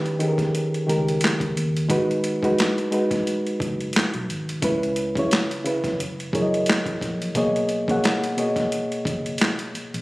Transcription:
0.00 0.19 D#3 loud
0.00 0.20 C#4 medium
0.00 0.21 G4 medium
0.00 1.91 B4 loud
0.06 closed hi-hat soft
0.19 0.82 D#3 medium
0.19 0.82 C#4 medium
0.19 0.83 G4 medium
0.19 0.28 G#4 medium
0.19 closed hi-hat medium
0.28 0.86 A#4 medium
0.38 kick medium
0.38 snare soft
0.38 closed hi-hat soft
0.55 closed hi-hat medium
0.74 closed hi-hat soft
0.87 1.19 C#2 medium
0.87 1.81 D#3 medium
0.87 1.82 C#4 medium
0.87 1.82 G4 medium
0.87 1.83 A#4 medium
0.87 closed hi-hat medium
1.09 closed hi-hat soft
1.21 snare medium
1.21 closed hi-hat medium
1.25 clap medium
1.40 1.54 C#2 medium
1.40 kick medium
1.40 closed hi-hat soft
1.56 1.87 D#2 medium
1.56 closed hi-hat medium
1.77 closed hi-hat soft
1.89 2.54 G#1 loud
1.89 2.37 G#3 loud
1.89 2.38 D#4 medium
1.89 2.38 F#4 medium
1.89 2.39 B4 loud
1.89 kick medium
1.89 closed hi-hat medium
2.11 closed hi-hat soft
2.24 closed hi-hat medium
2.43 2.88 G#3 medium
2.43 2.88 D#4 medium
2.43 2.88 F#4 medium
2.43 2.89 B4 medium
2.43 kick medium
2.43 closed hi-hat soft
2.59 snare loud
2.59 clap medium
2.59 closed hi-hat medium
2.78 closed hi-hat soft
2.91 4.17 G#3 medium
2.91 4.18 D#4 medium
2.91 4.18 F#4 medium
2.91 4.18 B4 medium
2.91 closed hi-hat medium
3.11 kick medium
3.11 snare soft
3.11 closed hi-hat soft
3.27 closed hi-hat medium
3.47 closed hi-hat soft
3.60 3.92 F#1 medium
3.60 kick medium
3.60 closed hi-hat medium
3.81 closed hi-hat soft
3.93 snare loud
3.93 closed hi-hat medium
3.97 clap medium
4.14 4.27 B1 medium
4.14 closed hi-hat soft
4.29 4.60 G#1 medium
4.29 closed hi-hat medium
4.49 closed hi-hat soft
4.62 5.27 C#2 medium
4.62 5.10 C#3 medium
4.62 5.11 C#4 loud
4.62 5.11 E4 medium
4.62 5.12 B4 loud
4.62 kick loud
4.62 closed hi-hat medium
4.83 closed hi-hat soft
4.96 closed hi-hat medium
5.15 5.61 C#3 medium
5.15 5.61 C#4 medium
5.15 5.62 E4 medium
5.15 5.62 C#5 medium
5.15 kick medium
5.15 closed hi-hat soft
5.31 snare loud
5.31 clap medium
5.31 closed hi-hat medium
5.51 closed hi-hat soft
5.65 5.99 C#3 medium
5.65 5.99 C#4 medium
5.65 6.00 E4 medium
5.65 6.00 B4 medium
5.65 closed hi-hat medium
5.84 kick medium
5.84 snare soft
5.84 closed hi-hat soft
6.00 6.30 F#1 medium
6.00 closed hi-hat medium
6.20 closed hi-hat soft
6.33 6.65 F#1 medium
6.33 7.27 F#3 medium
6.33 7.27 E4 medium
6.33 7.27 G#4 medium
6.33 7.28 A#4 medium
6.33 6.41 C#5 medium
6.33 kick medium
6.33 closed hi-hat medium
6.42 7.32 D#5 medium
6.54 closed hi-hat soft
6.66 snare medium
6.66 closed hi-hat medium
6.70 clap medium
6.86 muted fingered electric bass stroke soft
6.86 kick medium
6.86 closed hi-hat soft
7.01 7.33 A#1 medium
7.01 kick medium
7.01 snare soft
7.01 closed hi-hat medium
7.22 closed hi-hat soft
7.35 7.99 B1 medium
7.35 7.83 B2 medium
7.35 7.83 A#3 medium
7.35 7.84 G#4 medium
7.35 7.84 C#5 medium
7.35 7.84 D#5 loud
7.35 kick loud
7.35 closed hi-hat medium
7.56 closed hi-hat soft
7.69 closed hi-hat medium
7.88 8.33 B2 medium
7.88 8.33 A#3 medium
7.88 8.34 G#4 medium
7.88 8.34 C#5 medium
7.88 8.34 F#5 medium
7.88 kick medium
7.88 closed hi-hat soft
8.04 snare loud
8.04 clap medium
8.04 closed hi-hat medium
8.24 closed hi-hat soft
8.37 9.63 B2 medium
8.37 9.63 A#3 medium
8.37 9.63 G#4 medium
8.37 9.64 C#5 medium
8.37 9.64 D#5 medium
8.37 closed hi-hat medium
8.56 kick medium
8.56 snare soft
8.56 closed hi-hat soft
8.72 closed hi-hat medium
8.92 closed hi-hat soft
9.05 9.37 F#1 medium
9.05 kick medium
9.05 closed hi-hat medium
9.26 closed hi-hat soft
9.38 snare medium
9.38 closed hi-hat medium
9.42 clap medium
9.59 closed hi-hat soft
9.74 muted fingered electric bass stroke soft
9.74 closed hi-hat medium
9.94 10.02 A#1 medium
9.94 closed hi-hat soft

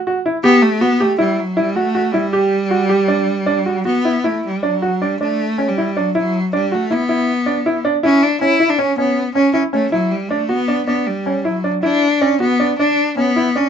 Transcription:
0.07 0.17 F#4 medium
0.26 0.36 E4 medium
0.43 0.64 B3 loud
0.43 0.65 G4 medium
0.62 0.83 A3 medium
0.81 1.03 B3 loud
0.81 0.92 F#4 medium
1.00 1.19 A3 medium
1.00 1.11 G4 medium
1.18 1.41 G3 medium
1.18 1.40 E4 medium
1.40 1.60 F#3 medium
1.57 1.77 G3 medium
1.57 1.68 E4 medium
1.76 2.14 A3 medium
1.76 1.87 F#4 medium
1.95 2.06 F#4 medium
2.12 3.85 G3 medium
2.12 2.24 E4 medium
2.33 2.54 G4 medium
2.71 2.81 F#4 medium
2.89 3.00 G4 medium
3.08 3.30 D4 medium
3.46 3.58 D4 medium
3.66 3.77 F#4 medium
3.85 4.28 B3 medium
3.85 3.96 F#4 medium
4.05 4.16 E4 medium
4.24 4.45 A3 medium
4.24 4.46 E4 medium
4.46 4.65 G3 medium
4.63 5.04 F#3 medium
4.63 4.74 D4 medium
4.82 4.93 F#4 medium
5.02 5.20 G3 medium
5.02 5.12 D4 medium
5.20 5.70 A3 medium
5.20 5.42 D4 medium
5.58 5.69 C#4 medium
5.68 5.99 G3 medium
5.78 5.88 E4 medium
5.97 6.16 F#3 medium
5.97 6.07 D4 medium
6.15 6.51 F#3 medium
6.15 6.36 E4 medium
6.53 6.76 G3 medium
6.53 6.64 D4 medium
6.72 6.95 A3 medium
6.72 6.82 F#4 medium
6.91 7.86 B3 medium
6.91 7.01 E4 medium
7.09 7.30 E4 medium
7.46 7.57 D4 medium
7.66 7.77 E4 medium
7.85 7.95 D4 medium
8.03 8.24 C#4 loud
8.03 8.25 E4 medium
8.23 8.40 D4 medium
8.41 8.52 C#4 medium
8.41 8.71 E4 medium
8.60 8.71 E4 medium
8.70 8.80 D4 medium
8.78 8.89 C#4 medium
8.78 8.97 C#4 medium
8.98 9.33 B3 medium
8.98 9.19 C#4 medium
9.35 9.53 C#4 medium
9.35 9.46 C#4 medium
9.54 9.62 C#4 medium
9.54 9.65 E4 medium
9.73 9.91 A3 medium
9.73 9.84 C#4 medium
9.92 10.13 F#3 medium
9.92 10.14 E4 medium
10.12 10.30 G3 medium
10.29 10.51 A3 medium
10.29 10.41 D4 medium
10.49 10.86 B3 medium
10.49 10.60 F#4 medium
10.68 10.79 D4 medium
10.86 11.08 B3 medium
10.86 11.09 D4 medium
11.07 11.48 G3 medium
11.26 11.37 C#4 medium
11.45 11.74 F#3 medium
11.45 11.56 E4 medium
11.64 11.75 D4 medium
11.83 12.23 D4 medium
11.83 12.05 E4 medium
12.21 12.40 C#4 medium
12.21 12.32 D4 medium
12.40 12.76 B3 medium
12.40 12.51 F#4 medium
12.60 12.71 D4 medium
12.79 13.14 D4 medium
12.79 13.01 D4 medium
13.17 13.59 B3 medium
13.17 13.28 C#4 medium
13.36 13.47 E4 medium
13.56 13.69 C#4 medium
13.56 13.66 D4 medium

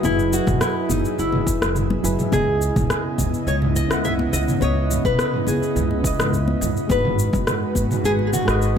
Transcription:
0.00 0.40 F#1 medium
0.00 2.03 F#3 medium
0.00 2.29 F#3 medium
0.00 0.03 E4 medium
0.00 2.29 E4 medium
0.00 1.43 E4 medium
0.00 0.05 G#4 medium
0.00 2.29 G#4 medium
0.00 2.29 B4 medium
0.00 2.34 D#5 medium
0.00 mid tom medium
0.00 high conga medium
0.04 0.34 E4 medium
0.04 1.44 G#4 medium
0.04 1.45 B4 medium
0.04 shaker soft
0.19 shaker soft
0.33 0.59 F#4 medium
0.33 shaker medium
0.47 0.57 E1 medium
0.47 kick loud
0.47 mid tom medium
0.47 high conga medium
0.47 low conga medium
0.47 shaker soft
0.61 0.91 E4 medium
0.61 cross-stick medium
0.61 shaker soft
0.89 1.00 F#1 medium
0.89 1.19 D#4 medium
0.89 mid tom medium
0.89 high conga medium
0.89 shaker medium
1.05 shaker soft
1.18 1.54 F#1 medium
1.18 1.72 E4 medium
1.18 shaker soft
1.32 mid tom medium
1.32 high conga medium
1.47 kick loud
1.47 shaker medium
1.62 1.97 F#1 medium
1.62 cross-stick medium
1.62 shaker soft
1.76 mid tom medium
1.76 shaker soft
1.90 high conga medium
1.90 low conga medium
2.03 2.14 F#1 medium
2.03 2.29 F#3 medium
2.03 2.29 E4 medium
2.03 2.30 G#4 medium
2.03 2.30 B4 medium
2.03 shaker medium
2.19 mid tom medium
2.19 shaker soft
2.30 2.69 C#2 medium
2.30 3.86 C#3 medium
2.30 6.86 C#3 medium
2.30 3.87 B3 medium
2.30 6.86 B3 medium
2.30 6.86 E4 medium
2.30 3.88 E4 medium
2.30 3.15 G#4 loud
2.30 6.86 D#5 medium
2.30 kick loud
2.30 mid tom medium
2.30 high conga medium
2.30 shaker soft
2.36 3.89 D#5 medium
2.62 shaker medium
2.76 2.85 B1 medium
2.76 kick loud
2.76 mid tom medium
2.76 high conga medium
2.76 low conga medium
2.76 shaker soft
2.90 cross-stick medium
2.90 shaker soft
3.18 3.29 C#2 medium
3.18 kick medium
3.18 mid tom medium
3.18 high conga medium
3.18 shaker medium
3.34 shaker soft
3.47 3.83 C#2 medium
3.47 3.55 C#5 loud
3.47 shaker soft
3.62 mid tom medium
3.62 high conga medium
3.76 4.04 D#5 medium
3.76 shaker medium
3.88 4.26 C#2 medium
3.88 4.57 C#3 medium
3.88 4.58 B3 medium
3.88 4.59 E4 medium
3.88 cross-stick medium
3.88 shaker soft
3.93 4.59 F#5 medium
4.04 4.12 E5 loud
4.04 mid tom medium
4.04 shaker soft
4.19 high conga medium
4.33 4.43 C#2 medium
4.33 4.41 D#5 loud
4.33 shaker medium
4.48 mid tom medium
4.48 shaker soft
4.59 4.97 C#2 medium
4.59 6.00 C#3 medium
4.59 6.01 B3 medium
4.59 6.01 E4 medium
4.59 5.05 C#5 loud
4.59 high conga medium
4.59 shaker soft
4.64 6.02 D#5 loud
4.90 mid tom medium
4.90 shaker medium
5.05 5.14 B1 medium
5.05 5.48 B4 medium
5.05 kick loud
5.05 high conga medium
5.05 low conga medium
5.05 shaker soft
5.19 cross-stick medium
5.19 shaker soft
5.34 mid tom medium
5.47 5.57 C#2 medium
5.47 6.01 G#4 medium
5.47 high conga medium
5.47 shaker medium
5.63 shaker soft
5.76 6.11 C#2 medium
5.76 mid tom medium
5.76 shaker soft
5.91 high conga medium
6.01 6.85 C#3 medium
6.01 6.86 B3 medium
6.01 6.87 E4 medium
6.01 kick loud
6.01 shaker medium
6.07 6.88 D#5 medium
6.19 6.54 C#2 medium
6.19 cross-stick medium
6.19 mid tom medium
6.19 shaker soft
6.34 shaker soft
6.48 high conga medium
6.61 6.71 C#2 medium
6.61 mid tom medium
6.61 shaker medium
6.77 shaker soft
6.87 7.26 G#1 medium
6.87 8.43 G#3 medium
6.87 8.78 G#3 medium
6.87 8.44 D#4 medium
6.87 8.78 F#4 medium
6.87 8.45 F#4 medium
6.87 8.78 B4 medium
6.87 8.05 B4 loud
6.87 kick loud
6.87 high conga medium
6.87 shaker soft
6.93 8.46 B4 medium
7.05 mid tom medium
7.19 shaker medium
7.33 7.43 F#1 medium
7.33 kick medium
7.33 high conga medium
7.33 low conga medium
7.33 shaker soft
7.47 cross-stick medium
7.47 mid tom medium
7.47 shaker soft
7.75 7.86 G#1 medium
7.75 kick medium
7.75 high conga medium
7.75 shaker medium
7.91 mid tom medium
7.91 shaker soft
8.04 8.40 G#1 medium
8.04 8.11 G#4 loud
8.04 shaker soft
8.19 high conga medium
8.27 8.33 G#4 medium
8.33 8.78 F#4 loud
8.33 mid tom medium
8.33 shaker medium
8.45 8.78 G#1 medium
8.45 8.78 G#3 medium
8.45 8.78 D#4 medium
8.45 8.78 F#4 medium
8.45 cross-stick medium
8.45 shaker soft
8.51 8.78 D#5 medium
8.62 shaker soft

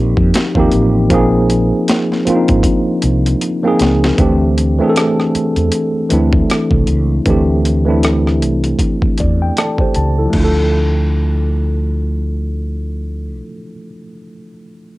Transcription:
0.00 0.13 A#1 medium
0.00 0.28 F3 medium
0.00 0.28 A#3 medium
0.00 0.29 C4 medium
0.00 0.29 D#4 medium
0.00 0.30 G4 medium
0.17 0.30 F2 loud
0.17 kick medium
0.34 snare loud
0.34 closed hi-hat medium
0.55 0.68 D#2 medium
0.55 1.01 F3 medium
0.55 1.01 A#3 medium
0.55 1.02 C4 medium
0.55 1.02 D#4 medium
0.55 kick medium
0.60 1.03 G4 medium
0.72 1.11 A1 medium
0.72 closed hi-hat medium
1.10 1.71 A#1 loud
1.10 2.06 F3 medium
1.10 2.07 A#3 medium
1.10 2.07 C4 medium
1.10 2.08 D#4 medium
1.10 kick medium
1.10 closed hi-hat medium
1.14 2.08 G#4 medium
1.50 closed hi-hat medium
1.88 snare loud
1.88 closed hi-hat medium
2.12 snare soft
2.25 3.36 F3 medium
2.25 3.36 A#3 medium
2.25 3.37 C4 medium
2.25 2.35 D4 medium
2.25 muted fretless electric bass stroke soft
2.25 closed hi-hat medium
2.30 3.38 F4 medium
2.35 3.41 D#4 medium
2.48 2.61 G#1 medium
2.48 kick medium
2.48 closed hi-hat soft
2.63 kick medium
2.63 closed hi-hat medium
3.02 3.33 C2 medium
3.02 closed hi-hat medium
3.26 closed hi-hat soft
3.41 closed hi-hat medium
3.63 4.09 F3 medium
3.63 4.09 A#3 medium
3.63 4.10 C4 medium
3.63 4.10 D#4 medium
3.68 4.11 G#4 medium
3.80 4.10 C#2 medium
3.80 snare medium
3.80 closed hi-hat medium
4.04 snare medium
4.17 4.79 D2 medium
4.17 4.66 E3 medium
4.17 4.66 A3 medium
4.17 4.67 C4 medium
4.17 4.67 D4 medium
4.17 kick medium
4.17 closed hi-hat medium
4.22 4.68 G4 medium
4.58 closed hi-hat medium
4.79 5.85 E3 medium
4.79 5.85 A3 medium
4.79 5.86 C4 medium
4.79 5.86 D4 medium
4.83 4.86 G#4 medium
4.89 5.90 A4 medium
4.96 cross-stick loud
4.96 closed hi-hat medium
5.20 cross-stick soft
5.35 muted fretless electric bass stroke soft
5.35 closed hi-hat medium
5.56 5.69 E2 medium
5.56 closed hi-hat soft
5.72 closed hi-hat medium
6.09 6.41 D2 medium
6.09 7.06 E3 medium
6.09 7.06 A3 medium
6.09 7.07 C4 medium
6.09 7.07 D4 medium
6.09 closed hi-hat medium
6.14 7.08 E4 medium
6.33 kick medium
6.50 cross-stick medium
6.50 closed hi-hat medium
6.71 6.84 C2 medium
6.71 kick medium
6.87 7.18 C#2 medium
6.87 closed hi-hat medium
7.26 8.43 D2 medium
7.26 7.74 E3 medium
7.26 7.74 A3 medium
7.26 7.75 C4 medium
7.26 7.75 D4 medium
7.26 kick medium
7.26 closed hi-hat medium
7.30 7.76 G4 medium
7.65 closed hi-hat medium
7.85 8.92 E3 medium
7.85 8.92 A3 medium
7.85 8.93 C4 medium
7.85 8.94 D4 medium
7.90 8.94 E4 medium
8.03 cross-stick medium
8.03 closed hi-hat medium
8.27 cross-stick soft
8.42 8.72 C2 medium
8.42 closed hi-hat medium
8.64 closed hi-hat soft
8.79 kick medium
8.79 closed hi-hat medium
9.02 kick medium
9.17 9.50 E2 medium
9.17 9.40 D5 medium
9.17 kick medium
9.17 closed hi-hat medium
9.42 9.56 G5 medium
9.57 9.79 A4 soft
9.57 9.79 D5 medium
9.57 9.93 A5 medium
9.57 cross-stick medium
9.57 closed hi-hat medium
9.78 10.17 G4 soft
9.78 10.16 C5 medium
9.78 kick medium
9.94 10.26 C#2 medium
9.94 10.31 A5 medium
9.94 closed hi-hat medium
10.19 10.55 E4 soft
10.19 10.43 A4 medium
10.26 13.31 F3 medium
10.30 13.40 D2 medium
10.30 13.36 A3 medium
10.30 kick medium
10.30 crash medium
10.35 13.41 D4 medium
10.39 13.45 F4 medium
10.44 13.50 A4 medium

